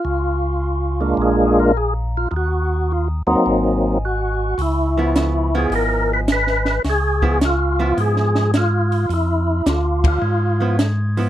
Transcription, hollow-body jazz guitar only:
X:1
M:4/4
L:1/8
Q:"Swing" 1/4=106
K:Dbmix
V:1 name="Hollow-body jazz guitar"
z8 | z8 | z [F,C=E]2 [F,CE]3 z2 | z [F,C=E] z [F,CE]3 z2 |
z4 z [F,C=E] z [F,CE] |]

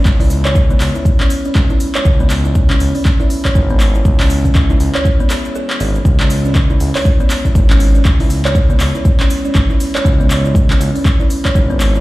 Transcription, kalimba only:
X:1
M:4/4
L:1/16
Q:"Swing 16ths" 1/4=120
K:C#m
V:1 name="Kalimba"
z E z c z B, z E z C z C z E z c | z B, z E z C z C z E z c z B, z E | z C z C z E z c z B, G z G z G z | z C z C z E z c z B, z E z C z C |
z E z c z B, z E z C z C z E z c | z B, z E z C z C z E z c z B, z E |]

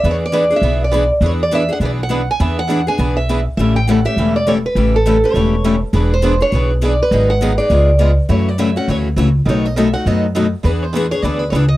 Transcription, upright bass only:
X:1
M:4/4
L:1/8
Q:"Swing" 1/4=204
K:Emix
V:1 name="Upright bass" clef=bass
E,,4 B,,,4 | E,,4 B,,,4 | E,,4 B,,,4 | A,,,4 E,,,4 |
A,,,4 E,,,4 | E,,,4 B,,,4 | G,,,4 C,,4 | F,,4 D,,2 C,,2 |
B,,,4 F,,4 | E,,4 D,,2 C,,2 |]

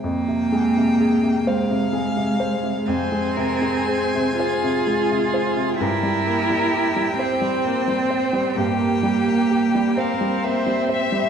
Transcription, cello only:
X:1
M:12/8
L:1/8
Q:3/8=43
K:Cphr
V:1 name="Cello"
B,3 A,3 C3 F3 | =E3 C3 B,3 C3 |]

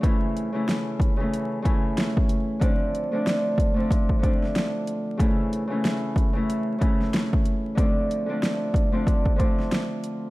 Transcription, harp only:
X:1
M:4/4
L:1/16
Q:"Swing 16ths" 1/4=93
K:Dm
V:1 name="Harp"
[^C,E,A,^CE]3 [C,E,A,CE]4 [C,E,A,CE]3 [C,E,A,CE]4- [C,E,A,CE] z | [D,F,A,CD]3 [D,F,A,CD]4 [D,F,A,CD]3 [D,F,A,CD]4- [D,F,A,CD] z | [^C,E,A,^CE]3 [C,E,A,CE]4 [C,E,A,CE]3 [C,E,A,CE]4- [C,E,A,CE] z | [D,F,A,CD]3 [D,F,A,CD]4 [D,F,A,CD]3 [D,F,A,CD]4- [D,F,A,CD] z |]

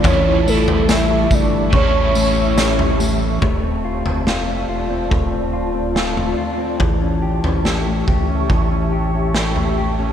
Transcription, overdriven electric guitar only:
X:1
M:4/4
L:1/8
Q:1/4=71
K:Dm
V:1 name="Overdriven electric guitar" clef=bass
[A,,E,G,^CE] [G,E]3 [E,G,CE]4 | z8 | z8 |]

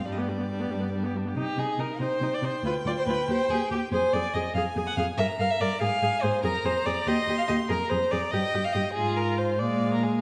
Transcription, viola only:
X:1
M:6/8
L:1/16
Q:3/8=95
K:Cm
V:1 name="Viola"
G, =B, G, B, G, B, G, B, G, B, G, B, | E2 E2 E2 E2 E2 E2 | F2 F2 F2 G2 G2 G2 | A2 A2 A2 A2 A2 A2 |
B2 B2 B2 A2 A2 A2 | [K:Eb] A2 A2 A2 G2 G2 G2 | A2 A2 A2 G2 G2 G2 | F6 A,6 |]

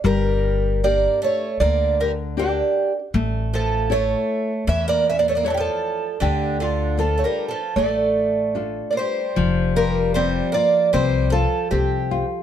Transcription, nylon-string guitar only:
X:1
M:4/4
L:1/8
Q:1/4=78
K:Dm
V:1 name="Nylon-string guitar"
G,2 [DG]2 D,2 [DGB]2 | A,2 [EA^c]2 E,2 [EAc]2 | D,2 [DFA]2 A,2 [DFA]2 | [K:F] F, F C F C F C F |]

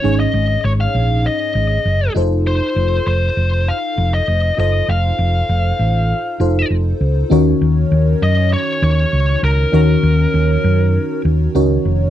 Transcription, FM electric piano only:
X:1
M:4/4
L:1/8
Q:1/4=99
K:Ebdor
V:1 name="FM electric piano"
[DEAd]6- [DEAd] [EF=Ac]- | [EF=Ac]6- [EFAc] [EFAc]- | [EF=Ac]4- [EFAc] [EFAc]3 | [DEGBd]8 |
[DEGBd]6 [DEGBd]2 |]
V:2 name="FM electric piano" clef=bass
A,,3 z4 z | z8 | z8 | E,3 z4 z |
E,3 z4 z |]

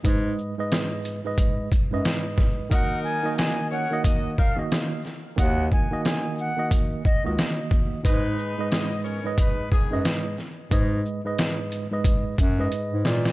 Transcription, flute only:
X:1
M:4/4
L:1/16
Q:"Swing 16ths" 1/4=90
K:Abdor
V:1 name="Flute"
z16 | g2 a2 a2 g2 z2 f z4 z | g2 a2 a2 g2 z2 e z4 z | z16 |
z16 |]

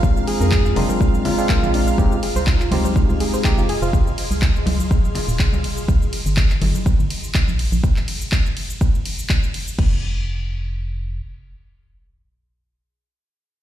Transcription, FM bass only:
X:1
M:4/4
L:1/16
Q:"Swing 16ths" 1/4=123
K:Fdor
V:1 name="FM bass" clef=bass
B,,, z2 F,,3 F,,, z6 B,,,3 | F,,, z2 C,,3 C,, z2 C,, z3 F,,,2 F,,, | F,,, z2 C,,3 C,, z4 E,,,2 C,,3 | C,, z2 G,,,3 G,,, z2 G,,, z3 B,,,2 B,,, |
z16 | F,,,12 z4 | z16 |]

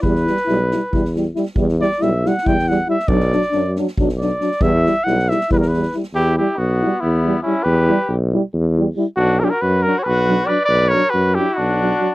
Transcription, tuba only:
X:1
M:7/8
L:1/8
Q:1/4=138
K:none
V:1 name="Tuba" clef=bass
E,,2 B,,,2 E,,3 | E,,2 B,,,2 E,,3 | B,,,2 ^F,,2 B,,,3 | E,,2 B,,,2 E,,3 |
E,,2 B,,,2 E,,3 | E,,2 B,,,2 E,,3 | B,,,2 ^F,,2 B,,,3 | B,,,2 ^F,,2 B,,,3 |]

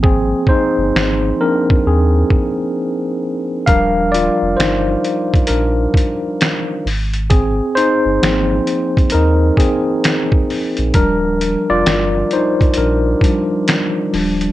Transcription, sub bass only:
X:1
M:4/4
L:1/16
Q:"Swing 16ths" 1/4=66
K:Eb
V:1 name="Sub bass" clef=bass
A,,,2 z G,,, A,,,2 z2 E,,2 z6 | E,,,3 F,,, G,,,2 z2 B,,,2 z4 A,,,2- | A,,,2 z G,,, A,,,2 z2 E,,2 z4 z B,,, | E,,,3 F,,, G,,,2 z2 B,,,2 z4 E,,,2 |]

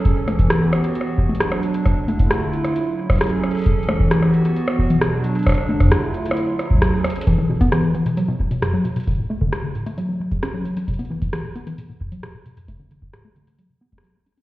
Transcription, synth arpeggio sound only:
X:1
M:4/4
L:1/16
Q:1/4=133
K:Bm
V:1 name="Synth arpeggio sound" clef=bass
z16 | z16 | z16 | z16 |
E, E, B,, B, E, E, E, B,, F, B,, B,, B,, F,, F, B,, B,, | D, A,, A, D, D, D, A,, A, F, F, F, C, C F, F, F, | B,, B, E, E, E, B,, B, E, B,, B,, F,, F, B,, B,, B,, F,, | A, D, D, D, A,, A, D, D, F, C, B, ^G, F, A, C C |]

